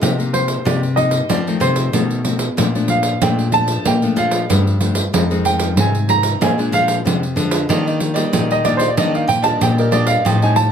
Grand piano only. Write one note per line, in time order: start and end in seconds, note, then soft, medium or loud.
0.33 0.65 C5 medium
0.67 0.97 D5 medium
0.96 1.28 D#5 medium
1.30 1.61 D5 medium
1.61 1.92 C5 medium
2.90 3.21 F5 medium
3.23 3.53 G5 medium
3.54 3.85 A5 loud
3.87 4.17 G5 medium
4.18 4.49 F5 medium
5.46 5.77 G5 medium
5.80 6.10 G#5 medium
6.10 6.41 A#5 loud
6.43 6.73 G#5 medium
6.74 6.93 F5 medium
8.52 8.66 D#5 medium
8.65 8.75 D5 medium
8.77 8.87 C5 medium
8.88 8.98 D5 medium
8.98 9.13 D#5 medium
9.15 9.30 F5 medium
9.28 9.44 G5 loud
9.44 9.60 A5 medium
9.62 9.77 G5 medium
9.79 9.94 A#4 medium
9.92 10.08 D5 medium
10.07 10.23 F5 medium
10.26 10.41 G5 medium
10.43 10.58 G#5 medium
10.56 10.72 A5 medium